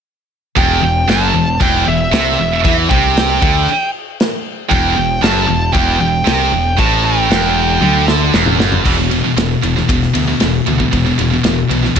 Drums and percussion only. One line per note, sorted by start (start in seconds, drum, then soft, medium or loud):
0.57 kick loud
0.57 crash medium
1.09 snare loud
1.09 crash medium
1.61 kick loud
1.61 crash medium
2.13 snare loud
2.13 crash medium
2.65 kick loud
2.65 crash medium
2.91 kick loud
3.17 snare loud
3.17 crash medium
3.42 kick loud
3.69 crash medium
4.20 snare loud
4.20 crash medium
4.71 kick loud
4.71 crash medium
5.23 snare loud
5.23 crash medium
5.74 kick loud
5.74 crash medium
6.27 snare loud
6.27 crash medium
6.79 kick loud
6.79 crash medium
7.31 snare loud
7.31 crash medium
7.83 high tom medium
8.08 snare medium
8.34 snare medium
8.46 mid tom medium
8.60 snare loud
8.72 floor tom medium
8.86 kick loud
8.86 crash medium
9.11 ride medium
9.38 snare loud
9.38 ride medium
9.63 ride medium
9.77 snare soft
9.89 kick loud
9.89 ride medium
10.03 snare soft
10.15 ride medium
10.40 snare medium
10.40 ride medium
10.66 ride medium
10.80 kick medium
10.93 kick medium
10.93 ride medium
11.19 ride medium
11.44 snare loud
11.44 ride medium
11.71 ride medium
11.85 snare soft
11.96 kick loud
11.96 ride medium